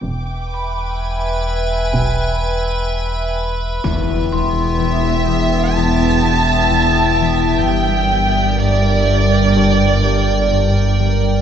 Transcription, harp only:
X:1
M:4/4
L:1/8
Q:1/4=63
K:Em
V:1 name="Harp" clef=bass
z8 | E,, E, E,, E,, E,, E,, E,, E, | G,, G, G,, G,, G,, G,, G,, G, |]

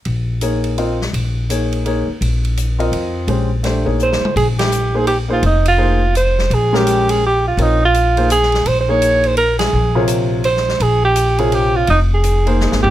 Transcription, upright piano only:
X:1
M:3/4
L:1/8
Q:"Swing" 1/4=167
K:Bbdor
V:1 name="Upright piano"
z2 [B,EAd]2 [CFBe] z | z2 [B,EAd]2 [B,EAd] z | z3 [CFBe]3 | [A,DGc] z [=A,=DGc] [B,E_A_d]2 z |
z3 [B,EAc] z [B,EAc] | z2 [B,EAc] z3 | z [A,DGB]3 z2 | [CFBd] z2 [B,EAc] z2 |
z [B,EAd]3 z2 | z [C,FBd]3 z2 | z3 [C,FBd]3 | z3 [B,EAc]3 |]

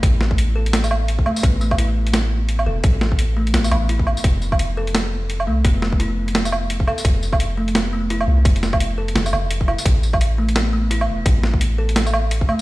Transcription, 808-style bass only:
X:1
M:4/4
L:1/8
Q:"Swing 16ths" 1/4=171
K:Flyd
V:1 name="808-style bass" clef=bass
A,,,6- A,,, z | A,,,6- A,,, E,,, | A,,,4 A,,, A,,,2 z | F,,,6- F,,, C,, |
F,,,6- F,,, z | F,,,6- F,,, C,, | F,,,4 F,,, F,,,2 z | A,,,6- A,,, E,,, |
A,,,6- A,,, z |]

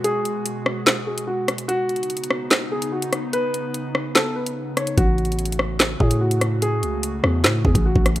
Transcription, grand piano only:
X:1
M:4/4
L:1/8
Q:1/4=146
K:Bmix
V:1 name="Grand piano"
G4- G G F z | F4- F G F z | B4 A B2 c | F4- F G F z |
G4- G G F z |]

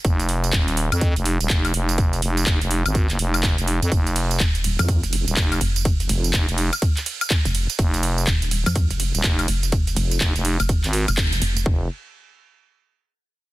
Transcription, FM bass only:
X:1
M:4/4
L:1/16
Q:"Swing 16ths" 1/4=124
K:Fm
V:1 name="FM bass" clef=bass
F,,,4 E,,,3 F,,2 F,,,2 E,,, F,,,2 F,,,2- | F,,,2 F,,,2 F,,, F,,,2 A,,,2 _G,,, F,,,3 F,,,2 F,, | F,,,4 z6 z E,,, F,,,2 z2 | z4 F,,, F,,,2 z8 z |
F,,,4 z6 z E,,, F,,,2 z2 | z4 F,,, F,,,2 z2 A,,,2 z4 z | F,,,2 z12 z2 |]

